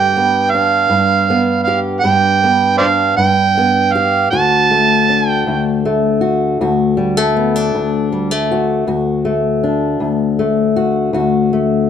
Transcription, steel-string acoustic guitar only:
0.00 0.89 G2 medium
0.00 0.54 D4 medium
0.00 1.66 G4 medium
0.17 1.29 B3 medium
0.55 2.81 D4 soft
0.90 2.02 G2 medium
1.30 2.43 B3 medium
1.68 2.03 G4 medium
2.04 3.16 G2 medium
2.04 3.94 G4 medium
2.44 3.56 B3 medium
2.81 5.09 D4 medium
3.17 4.27 G2 medium
3.58 4.28 B3 medium
3.95 4.28 G4 medium
4.32 5.47 D2 medium
4.32 6.21 F#4 medium
4.71 5.85 A3 medium
5.10 7.36 D4 soft
5.47 6.60 D2 medium
5.85 6.97 A3 medium
6.21 6.61 F#4 medium
6.61 7.73 D2 medium
6.61 8.50 F#4 medium
6.97 7.17 G3 medium
7.17 8.11 A3 medium
7.36 7.56 B3 medium
7.56 8.88 D4 soft
7.75 8.86 D2 medium
8.12 8.31 G3 medium
8.31 8.87 A3 soft
8.51 8.84 F#4 medium
8.87 9.99 D2 medium
8.87 10.75 F#4 medium
9.25 10.38 A3 medium
9.64 11.90 D4 soft
10.00 11.12 D2 medium
10.39 11.52 A3 medium
10.76 11.13 F#4 medium
11.13 11.90 D2 medium
11.13 11.90 F#4 medium
11.53 11.90 A3 medium

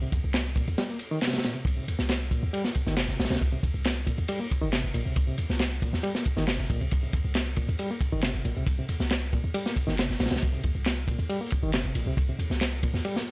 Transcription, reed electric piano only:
0.02 0.09 C3 medium
0.57 0.67 A#2 medium
0.78 0.89 G3 loud
0.89 0.97 A#3 medium
1.11 1.19 D#3 loud
1.43 1.54 A#2 medium
1.55 1.62 C3 medium
1.77 1.85 C3 medium
2.31 2.42 A#2 medium
2.53 2.64 G3 loud
2.64 2.72 A#3 medium
2.87 2.94 D#3 loud
3.19 3.29 A#2 medium
3.30 3.38 C3 medium
3.52 3.60 C3 medium
4.07 4.18 A#2 medium
4.29 4.39 G3 loud
4.40 4.47 A#3 medium
4.61 4.69 D#3 loud
4.72 4.93 C3 medium
4.94 5.04 A#2 medium
5.05 5.13 C3 medium
5.27 5.35 C3 medium
5.82 5.93 A#2 medium
6.03 6.14 G3 loud
6.15 6.23 A#3 medium
6.36 6.44 D#3 loud
6.70 6.80 A#2 medium
6.81 6.88 C3 medium
7.03 7.10 C3 medium
7.57 7.68 A#2 medium
7.79 7.89 G3 loud
7.91 7.98 A#3 medium
8.12 8.20 D#3 loud
8.23 8.44 C3 medium
8.45 8.55 A#2 medium
8.56 8.64 C3 medium
8.78 8.86 C3 medium
9.33 9.43 A#2 medium
9.54 9.65 G3 loud
9.66 9.73 A#3 medium
9.87 9.95 D#3 loud
9.98 10.19 C3 medium
10.20 10.30 A#2 medium
10.31 10.39 C3 medium
10.53 10.61 C3 medium
11.08 11.18 A#2 medium
11.30 11.40 G3 loud
11.41 11.48 A#3 medium
11.63 11.70 D#3 loud
11.74 11.95 C3 medium
11.96 12.06 A#2 medium
12.07 12.14 C3 medium
12.29 12.36 C3 medium
12.83 12.94 A#2 medium
13.05 13.15 G3 loud
13.17 13.24 A#3 medium

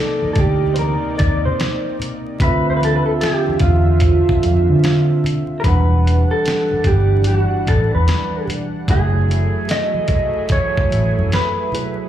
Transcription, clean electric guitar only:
0.00 0.32 A4 medium
0.33 0.38 A4 medium
0.39 0.74 G4 medium
0.74 0.78 C5 medium
0.79 1.16 A#4 medium
1.18 1.45 D5 medium
1.45 1.96 C5 medium
2.42 2.70 B4 loud
2.70 2.76 C5 medium
2.77 2.84 B4 medium
2.85 2.95 A4 loud
2.96 3.05 B4 loud
3.06 3.11 A4 medium
3.21 3.61 G4 medium
3.61 5.20 F4 medium
5.60 5.64 A#4 medium
5.64 6.31 B4 loud
6.31 6.88 A4 medium
6.87 7.27 G4 medium
7.27 7.38 G4 medium
7.38 7.69 F#4 medium
7.68 7.91 A4 medium
7.95 8.45 B4 medium
8.90 9.70 G#4 loud
9.71 10.52 D#5 loud
10.52 11.34 C#5 loud
11.34 11.95 B4 loud

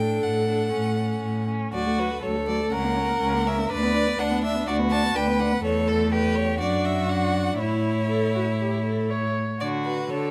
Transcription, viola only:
0.00 1.48 A4 medium
1.73 1.88 F#3 soft
1.86 2.00 A3 soft
1.98 2.12 F#3 soft
2.11 2.23 A3 soft
2.23 2.37 F#3 soft
2.36 2.50 A3 soft
2.48 2.62 F#3 soft
2.60 2.71 A3 soft
2.72 2.86 C#4 soft
2.84 2.98 A#3 soft
2.96 3.10 C#4 soft
3.09 3.20 A#3 soft
3.21 3.35 C#4 soft
3.34 3.48 A#3 soft
3.46 3.60 C#4 soft
3.58 3.70 A#3 soft
3.71 3.85 D4 soft
3.83 3.96 B3 soft
3.94 4.08 D4 soft
4.07 4.18 B3 soft
4.19 4.32 D4 soft
4.31 4.44 B3 soft
4.43 4.56 D4 soft
4.55 4.66 B3 soft
4.67 4.81 D4 soft
4.79 4.93 B3 medium
4.91 5.05 D4 medium
5.03 5.15 B3 soft
5.15 5.29 D4 soft
5.27 5.41 B3 soft
5.40 5.53 D4 soft
5.52 5.63 B3 soft
5.64 6.56 A3 medium
6.60 7.08 D4 medium
7.10 7.61 D4 soft
7.60 8.06 E4 soft
8.10 8.34 A4 medium
8.35 8.43 F#4 soft
8.60 8.84 G4 soft
8.85 9.11 A4 medium
9.10 9.61 C#5 medium
9.86 10.31 F#4 soft

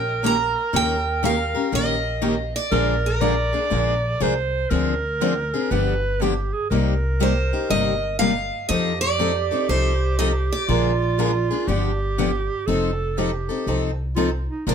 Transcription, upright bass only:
0.00 0.54 A#1 medium
0.73 1.53 D#2 medium
1.72 2.52 A#1 medium
2.72 3.52 A#1 medium
3.71 4.14 A#1 medium
4.21 4.64 C2 medium
4.71 5.51 D2 medium
5.71 6.51 G1 medium
6.71 7.50 C2 medium
7.70 8.50 G1 medium
8.69 9.49 F2 medium
9.69 10.49 C2 medium
10.68 11.48 A#1 medium
11.68 12.48 G1 medium
12.68 13.47 F1 medium
13.67 14.47 C2 medium
14.67 14.75 A#1 medium

